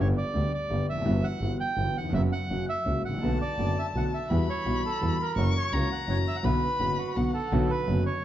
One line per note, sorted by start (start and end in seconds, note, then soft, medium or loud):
0.00 0.14 G1 medium
0.00 0.14 G2 medium
0.00 0.14 D3 medium
0.00 0.14 G3 medium
0.00 0.14 B3 medium
0.00 0.14 G4 medium
0.00 0.08 C#5 medium
0.18 0.52 D5 medium
0.34 0.49 D2 medium
0.34 0.50 D2 medium
0.34 0.49 D3 medium
0.34 0.49 G3 soft
0.34 0.50 B3 soft
0.34 0.50 G4 soft
0.54 0.87 D5 medium
0.71 0.86 G1 medium
0.71 0.86 G2 medium
0.71 0.86 D3 soft
0.71 0.86 G3 soft
0.71 0.86 B3 soft
0.71 0.86 G4 medium
0.88 1.05 F1 medium
0.88 1.26 E5 medium
0.92 0.97 E2 soft
0.98 1.02 F2 medium
1.02 1.21 G1 medium
1.02 1.06 F#2 medium
1.02 1.21 G2 medium
1.02 1.21 E3 medium
1.02 1.21 G3 medium
1.02 1.21 B3 medium
1.06 1.21 G1 medium
1.06 1.21 F#4 medium
1.24 1.57 F#5 loud
1.41 1.57 G1 medium
1.41 1.57 G2 medium
1.41 1.57 E3 soft
1.41 1.57 G3 soft
1.41 1.57 B3 soft
1.41 1.57 F#4 soft
1.60 1.97 G5 loud
1.77 1.92 G1 medium
1.77 1.93 G1 medium
1.77 1.93 G2 soft
1.77 1.92 E3 soft
1.77 1.92 G3 soft
1.77 1.92 B3 soft
1.77 1.93 F#4 soft
1.97 2.04 D#2 soft
1.97 2.13 F#5 medium
2.05 2.09 E2 medium
2.09 2.14 F2 medium
2.13 2.29 F#1 medium
2.13 2.29 F#2 medium
2.13 2.29 C#3 medium
2.13 2.29 F#3 medium
2.13 2.29 B3 medium
2.13 2.29 F#4 medium
2.13 2.22 E5 loud
2.32 2.66 F#5 loud
2.50 2.65 F#1 medium
2.50 2.66 F#2 medium
2.50 2.65 C#3 soft
2.50 2.65 F#3 soft
2.50 2.66 A#3 soft
2.50 2.66 F#4 soft
2.69 3.02 E5 medium
2.86 3.01 C#2 medium
2.86 3.01 C#2 soft
2.86 3.01 C#3 soft
2.86 3.01 F#3 soft
2.86 3.01 A#3 soft
2.86 3.02 F#4 soft
3.04 3.21 A1 soft
3.04 3.38 F#5 medium
3.09 3.13 G#1 soft
3.14 3.18 A1 medium
3.18 3.23 A#1 medium
3.18 3.37 B1 medium
3.23 3.38 B1 medium
3.23 3.38 B2 medium
3.23 3.38 D3 medium
3.23 3.38 A3 medium
3.23 3.38 B3 medium
3.23 3.38 F#4 medium
3.23 4.26 A5 medium
3.41 3.78 D5 medium
3.59 3.74 F#1 medium
3.59 3.74 F#1 soft
3.59 3.74 F#2 soft
3.59 3.74 D3 soft
3.59 3.74 A3 soft
3.59 3.74 B3 soft
3.59 3.74 F#4 soft
3.79 3.86 E5 medium
3.95 4.10 B1 medium
3.95 4.10 B1 soft
3.95 4.10 B2 soft
3.95 4.10 D3 soft
3.95 4.10 A3 soft
3.95 4.10 B3 soft
3.95 4.10 F#4 soft
3.95 4.05 F#5 medium
4.14 4.47 E5 medium
4.30 4.45 E2 medium
4.30 4.46 E2 medium
4.30 4.46 E3 medium
4.30 4.46 G3 medium
4.30 4.46 B3 medium
4.30 4.46 F#4 medium
4.30 5.33 B5 medium
4.50 4.82 C#5 medium
4.66 4.81 B1 medium
4.66 4.81 B2 medium
4.66 4.81 E3 soft
4.66 4.81 G3 soft
4.66 4.81 B3 soft
4.66 4.81 F#4 medium
4.85 5.18 A4 medium
5.01 5.17 E2 medium
5.01 5.17 E3 medium
5.01 5.16 G3 soft
5.01 5.17 B3 soft
5.01 5.17 F#4 soft
5.21 5.54 A#4 medium
5.37 5.52 F#1 medium
5.37 5.53 F#2 medium
5.37 5.52 E3 medium
5.37 5.52 F#3 medium
5.37 5.53 A#3 medium
5.37 5.53 C#4 medium
5.37 5.53 F#4 medium
5.37 5.74 C#6 loud
5.57 5.89 C#5 loud
5.73 5.88 C#2 medium
5.73 5.88 C#3 medium
5.73 5.88 E3 soft
5.73 5.88 A#3 soft
5.73 5.88 C#4 soft
5.73 5.89 F#4 medium
5.73 6.46 A#5 medium
5.92 6.10 F#5 loud
6.08 6.24 F#1 medium
6.08 6.23 F#2 medium
6.08 6.23 E3 soft
6.08 6.23 F#3 medium
6.08 6.23 A#3 soft
6.08 6.24 C#4 soft
6.08 6.24 F#4 medium
6.08 6.17 C#5 medium
6.28 6.36 E5 medium
6.36 6.40 F#5 medium
6.44 6.59 B1 medium
6.44 6.59 B2 medium
6.44 6.59 D3 medium
6.44 6.59 F#3 medium
6.44 6.59 B3 medium
6.44 6.59 F#4 medium
6.44 7.13 B4 medium
6.44 7.18 B5 medium
6.80 6.95 F#1 medium
6.80 6.95 F#2 medium
6.80 6.95 D3 soft
6.80 6.95 F#3 soft
6.80 6.95 B3 soft
6.80 6.95 F#4 medium
6.98 7.32 F#4 medium
7.16 7.32 B1 medium
7.16 7.32 B2 medium
7.16 7.31 D3 soft
7.16 7.32 F#3 soft
7.16 7.32 B3 soft
7.16 7.32 F#4 soft
7.16 7.53 F#5 medium
7.34 7.71 A4 medium
7.52 7.67 B1 medium
7.52 7.68 B1 loud
7.52 7.68 B2 medium
7.52 7.67 D3 medium
7.52 7.67 F#3 medium
7.52 7.68 B3 medium
7.52 7.68 F#4 medium
7.70 8.04 B4 loud
7.87 8.03 F#1 medium
7.87 8.04 F#1 medium
7.87 8.03 F#2 medium
7.87 8.03 D3 medium
7.87 8.03 F#3 soft
7.87 8.03 B3 medium
7.87 8.03 F#4 medium
8.06 8.25 C#5 loud